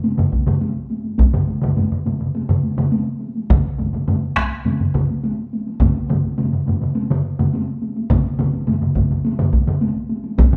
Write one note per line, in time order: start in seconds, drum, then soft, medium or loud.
0.04 taiko high medium
0.18 taiko low-mid medium
0.18 taiko mid medium
0.33 taiko medium
0.33 taiko high soft
0.47 taiko low-mid medium
0.47 taiko mid medium
0.47 taiko high soft
0.61 taiko high medium
0.90 taiko high soft
1.04 taiko high soft
1.18 taiko medium
1.18 taiko high medium
1.33 taiko low-mid medium
1.33 taiko mid medium
1.47 taiko high soft
1.62 taiko low-mid medium
1.62 taiko mid medium
1.62 taiko high soft
1.77 taiko low-mid medium
1.77 taiko mid medium
1.77 taiko high medium
1.92 taiko low-mid medium
1.92 taiko mid medium
2.06 taiko low-mid medium
2.06 taiko mid medium
2.06 taiko high soft
2.20 taiko low-mid medium
2.20 taiko mid medium
2.35 taiko high medium
2.49 taiko low-mid medium
2.49 taiko mid medium
2.63 taiko high soft
2.77 taiko low-mid medium
2.77 taiko mid medium
2.77 taiko high soft
2.92 taiko high medium
3.21 taiko high soft
3.36 taiko high soft
3.50 taiko loud
3.50 taiko low-mid medium
3.50 taiko mid loud
3.50 taiko high medium
3.79 taiko low-mid medium
3.79 taiko mid medium
3.79 taiko high soft
3.93 taiko low-mid medium
3.93 taiko mid medium
3.93 taiko high soft
4.08 taiko low-mid medium
4.08 taiko mid medium
4.08 taiko high medium
4.36 taiko rim medium
4.36 taiko medium
4.36 taiko high soft
4.65 taiko low-mid medium
4.65 taiko mid medium
4.65 taiko high medium
4.80 taiko low-mid medium
4.80 taiko mid medium
4.94 taiko medium
4.94 taiko low-mid medium
4.94 taiko mid medium
4.94 taiko high soft
5.10 taiko high soft
5.24 taiko high medium
5.53 taiko high soft
5.67 taiko high soft
5.81 taiko medium
5.81 taiko low-mid medium
5.81 taiko mid medium
5.81 taiko high medium
6.10 taiko low-mid medium
6.10 taiko mid loud
6.10 taiko high soft
6.24 taiko high soft
6.38 taiko low-mid medium
6.38 taiko mid medium
6.38 taiko high medium
6.53 taiko low-mid medium
6.53 taiko mid medium
6.67 taiko low-mid medium
6.67 taiko mid medium
6.67 taiko high medium
6.81 taiko low-mid medium
6.81 taiko mid medium
6.95 taiko high medium
7.10 taiko low-mid loud
7.10 taiko mid medium
7.39 taiko low-mid medium
7.39 taiko mid medium
7.39 taiko high soft
7.53 taiko high medium
7.82 taiko high soft
7.96 taiko high soft
8.10 taiko medium
8.10 taiko low-mid loud
8.10 taiko mid medium
8.10 taiko high medium
8.39 taiko low-mid medium
8.39 taiko mid loud
8.39 taiko high medium
8.53 taiko high medium
8.67 taiko low-mid medium
8.67 taiko mid medium
8.67 taiko high medium
8.82 taiko low-mid medium
8.82 taiko mid medium
8.96 taiko medium
8.96 taiko low-mid medium
8.96 taiko mid medium
8.96 taiko high medium
9.11 taiko low-mid medium
9.11 taiko mid medium
9.25 taiko high medium
9.39 taiko low-mid loud
9.39 taiko mid medium
9.53 taiko medium
9.53 taiko high medium
9.67 taiko low-mid medium
9.67 taiko mid medium
9.81 taiko high medium
10.09 taiko high medium
10.24 taiko high soft
10.38 taiko medium
10.38 taiko high medium
10.53 taiko low-mid loud
10.53 taiko mid medium